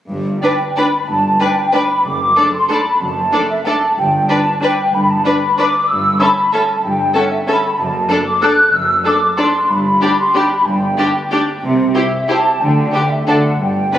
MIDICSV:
0, 0, Header, 1, 7, 480
1, 0, Start_track
1, 0, Key_signature, 1, "major"
1, 0, Tempo, 321888
1, 161, Time_signature, 3, 2, 24, 8
1, 8329, Tempo, 316289
1, 15049, Tempo, 323625
1, 19369, Tempo, 335570
1, 20882, End_track
2, 0, Start_track
2, 0, Title_t, "Flute section"
2, 0, Program_c, 0, 73
2, 628, Note_on_c, 0, 79, 50
2, 1106, Note_off_c, 0, 79, 0
2, 1150, Note_on_c, 0, 83, 45
2, 1621, Note_off_c, 0, 83, 0
2, 1625, Note_on_c, 0, 81, 49
2, 2091, Note_off_c, 0, 81, 0
2, 2092, Note_on_c, 0, 79, 48
2, 2593, Note_on_c, 0, 83, 49
2, 2596, Note_off_c, 0, 79, 0
2, 3067, Note_on_c, 0, 86, 54
2, 3068, Note_off_c, 0, 83, 0
2, 3778, Note_off_c, 0, 86, 0
2, 3791, Note_on_c, 0, 84, 49
2, 4033, Note_off_c, 0, 84, 0
2, 4039, Note_on_c, 0, 83, 47
2, 4492, Note_off_c, 0, 83, 0
2, 4505, Note_on_c, 0, 81, 56
2, 5210, Note_off_c, 0, 81, 0
2, 5220, Note_on_c, 0, 76, 44
2, 5460, Note_on_c, 0, 81, 46
2, 5461, Note_off_c, 0, 76, 0
2, 5925, Note_off_c, 0, 81, 0
2, 5926, Note_on_c, 0, 79, 54
2, 6389, Note_off_c, 0, 79, 0
2, 6405, Note_on_c, 0, 81, 54
2, 6888, Note_off_c, 0, 81, 0
2, 6898, Note_on_c, 0, 79, 53
2, 7357, Note_off_c, 0, 79, 0
2, 7364, Note_on_c, 0, 83, 61
2, 7593, Note_on_c, 0, 81, 55
2, 7594, Note_off_c, 0, 83, 0
2, 7829, Note_on_c, 0, 83, 59
2, 7837, Note_off_c, 0, 81, 0
2, 8314, Note_on_c, 0, 86, 58
2, 8316, Note_off_c, 0, 83, 0
2, 8789, Note_on_c, 0, 88, 63
2, 8791, Note_off_c, 0, 86, 0
2, 9258, Note_on_c, 0, 83, 58
2, 9267, Note_off_c, 0, 88, 0
2, 9754, Note_on_c, 0, 81, 50
2, 9759, Note_off_c, 0, 83, 0
2, 10228, Note_off_c, 0, 81, 0
2, 10231, Note_on_c, 0, 79, 58
2, 10698, Note_off_c, 0, 79, 0
2, 10704, Note_on_c, 0, 78, 59
2, 10958, Note_off_c, 0, 78, 0
2, 10959, Note_on_c, 0, 76, 54
2, 11050, Note_off_c, 0, 76, 0
2, 11205, Note_on_c, 0, 83, 64
2, 11556, Note_off_c, 0, 83, 0
2, 11574, Note_on_c, 0, 83, 40
2, 11665, Note_on_c, 0, 81, 57
2, 11674, Note_off_c, 0, 83, 0
2, 12067, Note_off_c, 0, 81, 0
2, 12395, Note_on_c, 0, 86, 62
2, 12639, Note_off_c, 0, 86, 0
2, 12640, Note_on_c, 0, 90, 70
2, 13109, Note_on_c, 0, 88, 67
2, 13112, Note_off_c, 0, 90, 0
2, 13586, Note_off_c, 0, 88, 0
2, 13588, Note_on_c, 0, 86, 63
2, 14087, Note_off_c, 0, 86, 0
2, 14094, Note_on_c, 0, 84, 60
2, 14462, Note_off_c, 0, 84, 0
2, 14483, Note_on_c, 0, 84, 46
2, 14575, Note_off_c, 0, 84, 0
2, 14583, Note_on_c, 0, 83, 66
2, 15301, Note_on_c, 0, 84, 59
2, 15307, Note_off_c, 0, 83, 0
2, 15536, Note_on_c, 0, 83, 62
2, 15539, Note_off_c, 0, 84, 0
2, 15998, Note_on_c, 0, 79, 60
2, 16007, Note_off_c, 0, 83, 0
2, 16732, Note_off_c, 0, 79, 0
2, 17916, Note_on_c, 0, 76, 55
2, 18384, Note_off_c, 0, 76, 0
2, 18427, Note_on_c, 0, 81, 64
2, 18880, Note_on_c, 0, 79, 55
2, 18898, Note_off_c, 0, 81, 0
2, 19607, Note_off_c, 0, 79, 0
2, 19610, Note_on_c, 0, 76, 47
2, 19856, Note_off_c, 0, 76, 0
2, 19865, Note_on_c, 0, 78, 42
2, 20330, Note_off_c, 0, 78, 0
2, 20345, Note_on_c, 0, 79, 58
2, 20882, Note_off_c, 0, 79, 0
2, 20882, End_track
3, 0, Start_track
3, 0, Title_t, "Violin section"
3, 0, Program_c, 1, 48
3, 634, Note_on_c, 1, 74, 29
3, 753, Note_off_c, 1, 74, 0
3, 1149, Note_on_c, 1, 74, 31
3, 1268, Note_off_c, 1, 74, 0
3, 2101, Note_on_c, 1, 74, 28
3, 2220, Note_off_c, 1, 74, 0
3, 2582, Note_on_c, 1, 74, 33
3, 2702, Note_off_c, 1, 74, 0
3, 3544, Note_on_c, 1, 74, 31
3, 3664, Note_off_c, 1, 74, 0
3, 4045, Note_on_c, 1, 74, 32
3, 4165, Note_off_c, 1, 74, 0
3, 4958, Note_on_c, 1, 74, 34
3, 5078, Note_off_c, 1, 74, 0
3, 5466, Note_on_c, 1, 74, 33
3, 5585, Note_off_c, 1, 74, 0
3, 6411, Note_on_c, 1, 74, 36
3, 6531, Note_off_c, 1, 74, 0
3, 6895, Note_on_c, 1, 74, 34
3, 7014, Note_off_c, 1, 74, 0
3, 7829, Note_on_c, 1, 74, 34
3, 7948, Note_off_c, 1, 74, 0
3, 8323, Note_on_c, 1, 74, 40
3, 8444, Note_off_c, 1, 74, 0
3, 9262, Note_on_c, 1, 76, 36
3, 9383, Note_off_c, 1, 76, 0
3, 9748, Note_on_c, 1, 76, 39
3, 9870, Note_off_c, 1, 76, 0
3, 10699, Note_on_c, 1, 76, 38
3, 10821, Note_off_c, 1, 76, 0
3, 11209, Note_on_c, 1, 76, 42
3, 11330, Note_off_c, 1, 76, 0
3, 12143, Note_on_c, 1, 74, 40
3, 12264, Note_off_c, 1, 74, 0
3, 12637, Note_on_c, 1, 74, 41
3, 12758, Note_off_c, 1, 74, 0
3, 13594, Note_on_c, 1, 74, 38
3, 13715, Note_off_c, 1, 74, 0
3, 14069, Note_on_c, 1, 74, 41
3, 14191, Note_off_c, 1, 74, 0
3, 15055, Note_on_c, 1, 74, 38
3, 15173, Note_off_c, 1, 74, 0
3, 15541, Note_on_c, 1, 74, 38
3, 15660, Note_off_c, 1, 74, 0
3, 16480, Note_on_c, 1, 74, 38
3, 16598, Note_off_c, 1, 74, 0
3, 16981, Note_on_c, 1, 74, 39
3, 17100, Note_off_c, 1, 74, 0
3, 17926, Note_on_c, 1, 72, 36
3, 18044, Note_off_c, 1, 72, 0
3, 18428, Note_on_c, 1, 72, 36
3, 18547, Note_off_c, 1, 72, 0
3, 19373, Note_on_c, 1, 71, 31
3, 19487, Note_off_c, 1, 71, 0
3, 19864, Note_on_c, 1, 74, 34
3, 19978, Note_off_c, 1, 74, 0
3, 20816, Note_on_c, 1, 74, 31
3, 20882, Note_off_c, 1, 74, 0
3, 20882, End_track
4, 0, Start_track
4, 0, Title_t, "Violin section"
4, 0, Program_c, 2, 48
4, 653, Note_on_c, 2, 71, 31
4, 773, Note_off_c, 2, 71, 0
4, 1154, Note_on_c, 2, 71, 32
4, 1273, Note_off_c, 2, 71, 0
4, 2092, Note_on_c, 2, 71, 32
4, 2211, Note_off_c, 2, 71, 0
4, 2580, Note_on_c, 2, 71, 33
4, 2699, Note_off_c, 2, 71, 0
4, 3535, Note_on_c, 2, 69, 33
4, 3655, Note_off_c, 2, 69, 0
4, 4019, Note_on_c, 2, 69, 35
4, 4138, Note_off_c, 2, 69, 0
4, 4970, Note_on_c, 2, 69, 33
4, 5089, Note_off_c, 2, 69, 0
4, 5459, Note_on_c, 2, 69, 37
4, 5578, Note_off_c, 2, 69, 0
4, 6403, Note_on_c, 2, 71, 35
4, 6522, Note_off_c, 2, 71, 0
4, 6895, Note_on_c, 2, 71, 36
4, 7015, Note_off_c, 2, 71, 0
4, 7836, Note_on_c, 2, 71, 38
4, 7956, Note_off_c, 2, 71, 0
4, 8324, Note_on_c, 2, 71, 38
4, 8446, Note_off_c, 2, 71, 0
4, 9272, Note_on_c, 2, 69, 42
4, 9394, Note_off_c, 2, 69, 0
4, 9764, Note_on_c, 2, 69, 40
4, 9885, Note_off_c, 2, 69, 0
4, 10701, Note_on_c, 2, 69, 42
4, 10822, Note_off_c, 2, 69, 0
4, 11203, Note_on_c, 2, 69, 41
4, 11325, Note_off_c, 2, 69, 0
4, 12134, Note_on_c, 2, 69, 42
4, 12256, Note_off_c, 2, 69, 0
4, 12638, Note_on_c, 2, 69, 41
4, 12760, Note_off_c, 2, 69, 0
4, 13589, Note_on_c, 2, 69, 39
4, 13711, Note_off_c, 2, 69, 0
4, 14083, Note_on_c, 2, 69, 40
4, 14205, Note_off_c, 2, 69, 0
4, 15055, Note_on_c, 2, 67, 39
4, 15173, Note_off_c, 2, 67, 0
4, 15544, Note_on_c, 2, 67, 41
4, 15662, Note_off_c, 2, 67, 0
4, 16490, Note_on_c, 2, 67, 40
4, 16609, Note_off_c, 2, 67, 0
4, 16982, Note_on_c, 2, 67, 40
4, 17101, Note_off_c, 2, 67, 0
4, 17924, Note_on_c, 2, 67, 37
4, 18042, Note_off_c, 2, 67, 0
4, 18419, Note_on_c, 2, 67, 38
4, 18538, Note_off_c, 2, 67, 0
4, 19381, Note_on_c, 2, 67, 35
4, 19496, Note_off_c, 2, 67, 0
4, 19869, Note_on_c, 2, 69, 35
4, 19984, Note_off_c, 2, 69, 0
4, 20807, Note_on_c, 2, 71, 35
4, 20882, Note_off_c, 2, 71, 0
4, 20882, End_track
5, 0, Start_track
5, 0, Title_t, "Viola section"
5, 0, Program_c, 3, 48
5, 641, Note_on_c, 3, 62, 30
5, 760, Note_off_c, 3, 62, 0
5, 1145, Note_on_c, 3, 62, 31
5, 1265, Note_off_c, 3, 62, 0
5, 2094, Note_on_c, 3, 62, 29
5, 2213, Note_off_c, 3, 62, 0
5, 2590, Note_on_c, 3, 62, 31
5, 2710, Note_off_c, 3, 62, 0
5, 3539, Note_on_c, 3, 62, 30
5, 3659, Note_off_c, 3, 62, 0
5, 4028, Note_on_c, 3, 62, 32
5, 4148, Note_off_c, 3, 62, 0
5, 4960, Note_on_c, 3, 62, 34
5, 5079, Note_off_c, 3, 62, 0
5, 5453, Note_on_c, 3, 62, 33
5, 5572, Note_off_c, 3, 62, 0
5, 6389, Note_on_c, 3, 62, 33
5, 6508, Note_off_c, 3, 62, 0
5, 6879, Note_on_c, 3, 62, 34
5, 6998, Note_off_c, 3, 62, 0
5, 7823, Note_on_c, 3, 62, 36
5, 7943, Note_off_c, 3, 62, 0
5, 8320, Note_on_c, 3, 62, 38
5, 8441, Note_off_c, 3, 62, 0
5, 9259, Note_on_c, 3, 61, 39
5, 9380, Note_off_c, 3, 61, 0
5, 9755, Note_on_c, 3, 61, 36
5, 9876, Note_off_c, 3, 61, 0
5, 10701, Note_on_c, 3, 61, 40
5, 10823, Note_off_c, 3, 61, 0
5, 11194, Note_on_c, 3, 61, 36
5, 11315, Note_off_c, 3, 61, 0
5, 12142, Note_on_c, 3, 62, 39
5, 12263, Note_off_c, 3, 62, 0
5, 12630, Note_on_c, 3, 62, 42
5, 12752, Note_off_c, 3, 62, 0
5, 13588, Note_on_c, 3, 62, 39
5, 13709, Note_off_c, 3, 62, 0
5, 14077, Note_on_c, 3, 62, 42
5, 14198, Note_off_c, 3, 62, 0
5, 15045, Note_on_c, 3, 62, 40
5, 15164, Note_off_c, 3, 62, 0
5, 15543, Note_on_c, 3, 62, 41
5, 15662, Note_off_c, 3, 62, 0
5, 16491, Note_on_c, 3, 62, 37
5, 16609, Note_off_c, 3, 62, 0
5, 16982, Note_on_c, 3, 62, 37
5, 17101, Note_off_c, 3, 62, 0
5, 17921, Note_on_c, 3, 64, 36
5, 18040, Note_off_c, 3, 64, 0
5, 18423, Note_on_c, 3, 64, 36
5, 18542, Note_off_c, 3, 64, 0
5, 19370, Note_on_c, 3, 62, 32
5, 19485, Note_off_c, 3, 62, 0
5, 19863, Note_on_c, 3, 62, 34
5, 19977, Note_off_c, 3, 62, 0
5, 20808, Note_on_c, 3, 62, 32
5, 20882, Note_off_c, 3, 62, 0
5, 20882, End_track
6, 0, Start_track
6, 0, Title_t, "Cello section"
6, 0, Program_c, 4, 48
6, 153, Note_on_c, 4, 43, 37
6, 558, Note_off_c, 4, 43, 0
6, 1614, Note_on_c, 4, 43, 39
6, 2011, Note_off_c, 4, 43, 0
6, 3062, Note_on_c, 4, 42, 38
6, 3458, Note_off_c, 4, 42, 0
6, 4499, Note_on_c, 4, 42, 39
6, 4889, Note_off_c, 4, 42, 0
6, 5926, Note_on_c, 4, 43, 40
6, 6316, Note_off_c, 4, 43, 0
6, 7354, Note_on_c, 4, 43, 42
6, 7749, Note_off_c, 4, 43, 0
6, 8794, Note_on_c, 4, 43, 42
6, 9187, Note_off_c, 4, 43, 0
6, 10236, Note_on_c, 4, 43, 46
6, 10627, Note_off_c, 4, 43, 0
6, 11678, Note_on_c, 4, 42, 50
6, 12067, Note_off_c, 4, 42, 0
6, 13116, Note_on_c, 4, 42, 46
6, 13507, Note_off_c, 4, 42, 0
6, 14563, Note_on_c, 4, 43, 47
6, 14966, Note_off_c, 4, 43, 0
6, 16013, Note_on_c, 4, 43, 49
6, 16406, Note_off_c, 4, 43, 0
6, 17456, Note_on_c, 4, 48, 43
6, 17847, Note_off_c, 4, 48, 0
6, 18903, Note_on_c, 4, 50, 45
6, 19291, Note_off_c, 4, 50, 0
6, 19856, Note_on_c, 4, 50, 42
6, 20249, Note_off_c, 4, 50, 0
6, 20322, Note_on_c, 4, 43, 42
6, 20722, Note_off_c, 4, 43, 0
6, 20801, Note_on_c, 4, 47, 39
6, 20882, Note_off_c, 4, 47, 0
6, 20882, End_track
7, 0, Start_track
7, 0, Title_t, "Double bass section"
7, 0, Program_c, 5, 48
7, 152, Note_on_c, 5, 31, 38
7, 557, Note_off_c, 5, 31, 0
7, 1609, Note_on_c, 5, 31, 43
7, 2009, Note_off_c, 5, 31, 0
7, 3062, Note_on_c, 5, 30, 43
7, 3458, Note_off_c, 5, 30, 0
7, 4495, Note_on_c, 5, 30, 42
7, 4887, Note_off_c, 5, 30, 0
7, 5913, Note_on_c, 5, 31, 46
7, 6309, Note_off_c, 5, 31, 0
7, 7346, Note_on_c, 5, 31, 45
7, 7746, Note_off_c, 5, 31, 0
7, 8792, Note_on_c, 5, 31, 46
7, 9186, Note_off_c, 5, 31, 0
7, 10236, Note_on_c, 5, 31, 46
7, 10627, Note_off_c, 5, 31, 0
7, 11665, Note_on_c, 5, 30, 53
7, 12061, Note_off_c, 5, 30, 0
7, 13100, Note_on_c, 5, 30, 51
7, 13498, Note_off_c, 5, 30, 0
7, 14560, Note_on_c, 5, 31, 49
7, 14964, Note_off_c, 5, 31, 0
7, 16001, Note_on_c, 5, 31, 49
7, 16400, Note_off_c, 5, 31, 0
7, 17450, Note_on_c, 5, 36, 49
7, 17844, Note_off_c, 5, 36, 0
7, 18895, Note_on_c, 5, 38, 43
7, 19288, Note_off_c, 5, 38, 0
7, 19863, Note_on_c, 5, 38, 41
7, 20252, Note_off_c, 5, 38, 0
7, 20333, Note_on_c, 5, 31, 40
7, 20727, Note_off_c, 5, 31, 0
7, 20882, End_track
0, 0, End_of_file